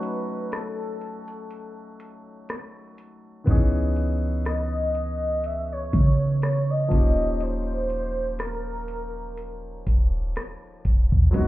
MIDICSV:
0, 0, Header, 1, 5, 480
1, 0, Start_track
1, 0, Tempo, 983607
1, 1695, Time_signature, 4, 2, 24, 8
1, 5601, End_track
2, 0, Start_track
2, 0, Title_t, "Soft synth lead"
2, 0, Program_c, 0, 80
2, 0, Note_on_c, 0, 71, 106
2, 264, Note_on_c, 0, 69, 87
2, 272, Note_off_c, 0, 71, 0
2, 980, Note_off_c, 0, 69, 0
2, 2183, Note_on_c, 0, 75, 113
2, 2663, Note_on_c, 0, 76, 109
2, 2670, Note_off_c, 0, 75, 0
2, 2788, Note_off_c, 0, 76, 0
2, 2792, Note_on_c, 0, 73, 98
2, 3119, Note_off_c, 0, 73, 0
2, 3143, Note_on_c, 0, 73, 95
2, 3271, Note_on_c, 0, 75, 104
2, 3279, Note_off_c, 0, 73, 0
2, 3622, Note_on_c, 0, 72, 112
2, 3629, Note_off_c, 0, 75, 0
2, 4101, Note_on_c, 0, 70, 88
2, 4109, Note_off_c, 0, 72, 0
2, 4818, Note_off_c, 0, 70, 0
2, 5601, End_track
3, 0, Start_track
3, 0, Title_t, "Grand piano"
3, 0, Program_c, 1, 0
3, 0, Control_c, 1, 64, 127
3, 0, Note_on_c, 1, 54, 65
3, 0, Note_on_c, 1, 57, 58
3, 0, Note_on_c, 1, 61, 58
3, 0, Note_on_c, 1, 63, 54
3, 0, Note_on_c, 1, 66, 68
3, 1668, Note_off_c, 1, 54, 0
3, 1672, Note_off_c, 1, 57, 0
3, 1676, Note_off_c, 1, 61, 0
3, 1679, Note_on_c, 1, 51, 58
3, 1680, Note_off_c, 1, 63, 0
3, 1684, Note_off_c, 1, 66, 0
3, 1687, Note_on_c, 1, 59, 65
3, 1695, Note_on_c, 1, 61, 68
3, 1702, Control_c, 1, 64, 0
3, 1703, Note_on_c, 1, 63, 71
3, 1711, Note_on_c, 1, 52, 73
3, 1712, Note_on_c, 1, 68, 77
3, 1721, Note_off_c, 1, 51, 0
3, 1798, Control_c, 1, 64, 127
3, 3352, Note_off_c, 1, 59, 0
3, 3355, Note_off_c, 1, 61, 0
3, 3359, Note_on_c, 1, 53, 66
3, 3360, Note_off_c, 1, 63, 0
3, 3363, Note_off_c, 1, 52, 0
3, 3364, Note_off_c, 1, 68, 0
3, 3368, Note_on_c, 1, 58, 58
3, 3375, Note_on_c, 1, 61, 60
3, 3381, Control_c, 1, 64, 0
3, 3383, Note_on_c, 1, 63, 57
3, 3392, Note_on_c, 1, 67, 72
3, 3469, Control_c, 1, 64, 127
3, 5267, Note_off_c, 1, 53, 0
3, 5272, Note_off_c, 1, 58, 0
3, 5275, Note_off_c, 1, 61, 0
3, 5279, Note_off_c, 1, 63, 0
3, 5284, Note_off_c, 1, 67, 0
3, 5519, Note_on_c, 1, 54, 73
3, 5527, Note_on_c, 1, 56, 69
3, 5535, Note_on_c, 1, 59, 68
3, 5541, Control_c, 1, 64, 0
3, 5543, Note_on_c, 1, 63, 68
3, 5551, Note_on_c, 1, 66, 83
3, 5601, Note_off_c, 1, 54, 0
3, 5601, Note_off_c, 1, 56, 0
3, 5601, Note_off_c, 1, 59, 0
3, 5601, Note_off_c, 1, 63, 0
3, 5601, Note_off_c, 1, 66, 0
3, 5601, End_track
4, 0, Start_track
4, 0, Title_t, "808-style bass"
4, 0, Program_c, 2, 38
4, 1695, Note_on_c, 2, 37, 96
4, 2876, Note_off_c, 2, 37, 0
4, 2895, Note_on_c, 2, 49, 97
4, 3356, Note_off_c, 2, 49, 0
4, 3375, Note_on_c, 2, 27, 97
4, 4796, Note_off_c, 2, 27, 0
4, 4816, Note_on_c, 2, 27, 98
4, 5046, Note_off_c, 2, 27, 0
4, 5295, Note_on_c, 2, 27, 101
4, 5420, Note_off_c, 2, 27, 0
4, 5428, Note_on_c, 2, 39, 101
4, 5532, Note_off_c, 2, 39, 0
4, 5536, Note_on_c, 2, 32, 97
4, 5601, Note_off_c, 2, 32, 0
4, 5601, End_track
5, 0, Start_track
5, 0, Title_t, "Drums"
5, 15, Note_on_c, 9, 42, 54
5, 63, Note_off_c, 9, 42, 0
5, 254, Note_on_c, 9, 42, 67
5, 258, Note_on_c, 9, 37, 112
5, 303, Note_off_c, 9, 42, 0
5, 307, Note_off_c, 9, 37, 0
5, 494, Note_on_c, 9, 42, 39
5, 543, Note_off_c, 9, 42, 0
5, 624, Note_on_c, 9, 42, 66
5, 673, Note_off_c, 9, 42, 0
5, 735, Note_on_c, 9, 42, 66
5, 784, Note_off_c, 9, 42, 0
5, 975, Note_on_c, 9, 42, 80
5, 1024, Note_off_c, 9, 42, 0
5, 1215, Note_on_c, 9, 42, 68
5, 1219, Note_on_c, 9, 37, 106
5, 1264, Note_off_c, 9, 42, 0
5, 1268, Note_off_c, 9, 37, 0
5, 1455, Note_on_c, 9, 42, 72
5, 1504, Note_off_c, 9, 42, 0
5, 1694, Note_on_c, 9, 42, 74
5, 1695, Note_on_c, 9, 36, 100
5, 1743, Note_off_c, 9, 36, 0
5, 1743, Note_off_c, 9, 42, 0
5, 1934, Note_on_c, 9, 42, 55
5, 1983, Note_off_c, 9, 42, 0
5, 2174, Note_on_c, 9, 42, 67
5, 2178, Note_on_c, 9, 37, 110
5, 2223, Note_off_c, 9, 42, 0
5, 2227, Note_off_c, 9, 37, 0
5, 2414, Note_on_c, 9, 42, 61
5, 2463, Note_off_c, 9, 42, 0
5, 2655, Note_on_c, 9, 42, 66
5, 2703, Note_off_c, 9, 42, 0
5, 2895, Note_on_c, 9, 36, 90
5, 2895, Note_on_c, 9, 42, 75
5, 2943, Note_off_c, 9, 36, 0
5, 2944, Note_off_c, 9, 42, 0
5, 3135, Note_on_c, 9, 42, 68
5, 3139, Note_on_c, 9, 37, 103
5, 3184, Note_off_c, 9, 42, 0
5, 3188, Note_off_c, 9, 37, 0
5, 3374, Note_on_c, 9, 42, 73
5, 3375, Note_on_c, 9, 36, 105
5, 3423, Note_off_c, 9, 36, 0
5, 3423, Note_off_c, 9, 42, 0
5, 3614, Note_on_c, 9, 42, 74
5, 3663, Note_off_c, 9, 42, 0
5, 3854, Note_on_c, 9, 42, 56
5, 3903, Note_off_c, 9, 42, 0
5, 4094, Note_on_c, 9, 42, 69
5, 4098, Note_on_c, 9, 37, 114
5, 4143, Note_off_c, 9, 42, 0
5, 4147, Note_off_c, 9, 37, 0
5, 4334, Note_on_c, 9, 42, 66
5, 4383, Note_off_c, 9, 42, 0
5, 4575, Note_on_c, 9, 42, 69
5, 4624, Note_off_c, 9, 42, 0
5, 4815, Note_on_c, 9, 36, 90
5, 4815, Note_on_c, 9, 42, 74
5, 4864, Note_off_c, 9, 36, 0
5, 4864, Note_off_c, 9, 42, 0
5, 5055, Note_on_c, 9, 42, 67
5, 5060, Note_on_c, 9, 37, 104
5, 5104, Note_off_c, 9, 42, 0
5, 5109, Note_off_c, 9, 37, 0
5, 5294, Note_on_c, 9, 42, 69
5, 5295, Note_on_c, 9, 36, 91
5, 5343, Note_off_c, 9, 42, 0
5, 5344, Note_off_c, 9, 36, 0
5, 5427, Note_on_c, 9, 36, 82
5, 5476, Note_off_c, 9, 36, 0
5, 5534, Note_on_c, 9, 42, 73
5, 5535, Note_on_c, 9, 36, 99
5, 5583, Note_off_c, 9, 42, 0
5, 5584, Note_off_c, 9, 36, 0
5, 5601, End_track
0, 0, End_of_file